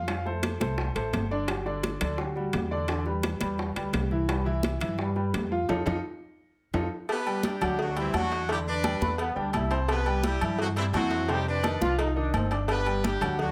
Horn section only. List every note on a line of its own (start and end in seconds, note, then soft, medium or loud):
7.11 7.43 B3 medium
7.11 7.42 G4 medium
7.11 7.43 B4 medium
7.46 7.77 G3 medium
7.46 7.77 D4 medium
7.46 7.77 G4 medium
7.81 7.98 F#3 medium
7.81 7.98 D4 medium
7.81 7.98 F#4 medium
7.98 8.14 E3 medium
7.98 8.14 C4 medium
7.98 8.14 E4 medium
8.16 8.47 F#3 medium
8.16 8.48 D4 medium
8.16 8.47 F#4 loud
8.50 8.58 G3 medium
8.50 8.58 E4 medium
8.50 8.58 G4 medium
8.68 9.16 D4 medium
8.68 9.16 B4 medium
8.68 9.16 D5 loud
9.90 10.22 B3 medium
9.90 10.22 G4 medium
9.90 10.22 B4 loud
10.25 10.57 G3 medium
10.25 10.57 E4 medium
10.25 10.57 G4 medium
10.60 10.67 F#3 medium
10.60 10.67 C4 medium
10.60 10.67 F#4 medium
10.77 10.85 E3 medium
10.77 10.85 C4 medium
10.77 10.85 E4 loud
10.95 11.27 F#3 medium
10.95 11.27 C4 medium
10.95 11.27 F#4 loud
11.30 11.47 G3 loud
11.30 11.47 D#4 medium
11.30 11.47 G4 loud
11.48 11.96 D4 medium
11.48 11.96 B4 medium
11.48 11.96 D5 medium
12.70 13.02 B3 medium
12.70 13.02 G4 medium
12.70 13.02 B4 loud
13.05 13.37 G3 medium
13.05 13.37 D4 medium
13.05 13.37 G4 medium
13.40 13.52 F#3 medium
13.40 13.52 D4 medium
13.40 13.52 F#4 medium